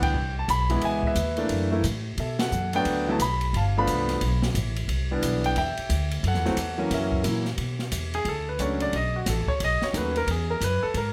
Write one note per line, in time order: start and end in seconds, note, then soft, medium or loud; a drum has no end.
0.00 0.13 D2 medium
0.00 0.13 E3 medium
0.00 0.13 G3 medium
0.00 0.14 B3 medium
0.00 0.14 D4 medium
0.00 0.12 B4 medium
0.00 0.34 G5 loud
0.00 kick medium
0.00 ride medium
0.13 0.47 C2 medium
0.39 0.49 A5 medium
0.48 0.81 B1 loud
0.48 0.84 B5 loud
0.48 kick soft
0.48 hi-hat pedal medium
0.48 ride medium
0.70 1.14 E3 medium
0.70 1.14 G#3 medium
0.70 1.14 B3 medium
0.70 1.14 E4 medium
0.70 ride soft
0.81 1.14 C#2 medium
0.81 1.06 E5 medium
0.81 1.06 G#5 medium
0.81 kick soft
0.81 ride medium
1.03 kick medium
1.07 1.49 B4 medium
1.07 1.69 E5 medium
1.15 1.49 D#2 medium
1.15 kick soft
1.15 hi-hat pedal medium
1.15 ride medium
1.37 1.70 E3 medium
1.37 1.70 A3 medium
1.37 1.70 A#3 medium
1.37 1.70 D4 medium
1.37 ride soft
1.49 1.83 F#2 medium
1.49 kick soft
1.49 ride medium
1.71 1.83 E3 medium
1.71 1.83 A3 medium
1.71 1.83 A#3 medium
1.71 1.83 E4 medium
1.83 2.17 A2 medium
1.83 kick soft
1.83 hi-hat pedal soft
1.83 ride medium
2.17 2.51 B2 medium
2.17 2.83 A4 medium
2.17 2.39 E5 medium
2.17 kick soft
2.17 ride medium
2.39 2.75 F#5 medium
2.39 snare medium
2.39 ride medium
2.52 2.85 F#2 medium
2.52 hi-hat pedal medium
2.73 3.05 F#3 medium
2.73 3.06 A3 medium
2.73 3.06 B3 medium
2.73 3.06 D4 medium
2.73 3.09 G5 loud
2.73 ride soft
2.85 3.18 D2 medium
2.85 kick soft
2.85 ride medium
3.08 3.19 F#3 medium
3.08 3.19 A3 medium
3.08 3.19 B3 medium
3.08 3.19 E4 medium
3.08 3.16 A5 medium
3.19 3.52 B1 medium
3.19 3.55 B5 medium
3.19 kick soft
3.19 hi-hat pedal medium
3.19 ride medium
3.41 ride soft
3.53 3.86 G1 medium
3.53 3.76 F5 medium
3.53 3.62 A5 medium
3.53 kick soft
3.53 ride medium
3.77 4.20 F3 medium
3.77 4.20 A3 medium
3.77 4.20 B3 medium
3.77 4.20 D4 medium
3.77 4.40 F5 medium
3.77 4.40 B5 medium
3.87 4.20 C2 medium
3.87 kick soft
3.87 hi-hat pedal medium
3.87 ride medium
4.09 snare soft
4.09 ride soft
4.21 4.54 B1 medium
4.21 kick soft
4.21 ride medium
4.42 snare medium
4.55 4.87 A1 loud
4.55 kick soft
4.55 hi-hat pedal soft
4.55 ride medium
4.76 ride medium
4.88 5.21 C2 medium
4.88 kick soft
4.88 ride medium
5.11 5.54 E3 medium
5.11 5.54 G3 medium
5.11 5.54 B3 medium
5.11 5.54 D4 medium
5.22 5.55 B1 medium
5.22 kick soft
5.22 hi-hat pedal medium
5.22 ride medium
5.44 5.56 G5 loud
5.44 ride soft
5.56 5.76 E2 medium
5.56 6.21 E5 medium
5.56 6.08 G5 loud
5.56 kick soft
5.56 ride medium
5.77 muted upright bass stroke soft
5.77 ride soft
5.89 6.22 D2 medium
5.89 kick soft
5.89 hi-hat pedal medium
5.89 ride medium
6.11 ride soft
6.23 6.36 F#2 medium
6.23 6.89 A4 medium
6.23 kick soft
6.23 ride medium
6.28 6.77 F#5 medium
6.34 6.47 E2 medium
6.34 snare soft
6.45 6.56 C2 medium
6.45 6.56 E3 medium
6.45 6.56 F#3 medium
6.45 6.56 A3 medium
6.45 6.57 C4 medium
6.45 snare soft
6.57 6.90 E2 medium
6.57 kick soft
6.57 hi-hat pedal medium
6.57 ride medium
6.78 7.22 E3 medium
6.78 7.22 F#3 medium
6.78 7.22 A#3 medium
6.78 7.22 C#4 medium
6.90 7.23 F#2 medium
6.90 7.56 A#4 medium
6.90 7.44 E5 medium
6.90 kick soft
6.90 snare soft
6.90 ride medium
7.12 kick medium
7.23 7.57 A#2 medium
7.23 7.43 E3 medium
7.23 7.43 F#3 soft
7.23 7.43 A#3 soft
7.23 7.44 E4 medium
7.23 kick soft
7.23 hi-hat pedal soft
7.23 ride medium
7.45 snare soft
7.57 7.91 B2 medium
7.57 kick soft
7.57 ride medium
7.79 snare soft
7.91 8.24 E2 medium
7.91 kick soft
7.91 hi-hat pedal medium
7.91 ride medium
8.14 8.26 G#4 medium
8.14 ride soft
8.25 8.58 D2 medium
8.25 8.48 A4 medium
8.25 kick soft
8.25 ride medium
8.49 8.60 B4 medium
8.59 8.92 C#2 medium
8.59 8.93 F#3 soft
8.59 8.94 A3 soft
8.59 8.93 C#4 medium
8.59 8.93 D4 medium
8.59 8.81 C#5 medium
8.59 kick soft
8.59 hi-hat pedal medium
8.59 ride medium
8.80 8.93 D5 medium
8.80 ride soft
8.93 9.26 B1 medium
8.93 9.15 D#5 medium
8.93 kick soft
8.93 ride medium
9.16 9.27 F#4 medium
9.26 9.46 A1 medium
9.26 9.49 A4 medium
9.26 kick soft
9.26 snare soft
9.26 hi-hat pedal medium
9.26 ride medium
9.48 9.60 C#5 medium
9.48 muted upright bass stroke soft
9.48 kick soft
9.60 9.80 B1 medium
9.60 kick soft
9.60 ride medium
9.64 9.83 D#5 loud
9.82 9.95 C#5 medium
9.82 muted upright bass stroke soft
9.82 snare soft
9.93 10.26 D#2 medium
9.93 10.13 D#3 soft
9.93 10.13 F#3 soft
9.93 10.13 A3 soft
9.93 10.14 C#4 medium
9.93 kick soft
9.93 hi-hat pedal medium
9.93 ride medium
9.97 10.17 B4 medium
10.16 10.28 A#4 medium
10.16 ride soft
10.27 10.60 E2 medium
10.27 kick soft
10.27 ride medium
10.31 10.50 G#4 medium
10.50 10.62 A#4 medium
10.61 10.81 F#2 medium
10.61 10.84 B4 medium
10.61 kick soft
10.61 hi-hat pedal medium
10.61 ride medium
10.83 10.95 A4 medium
10.83 muted upright bass stroke soft
10.94 11.13 G#2 medium
10.94 11.13 A#4 medium
10.94 kick soft
10.94 ride medium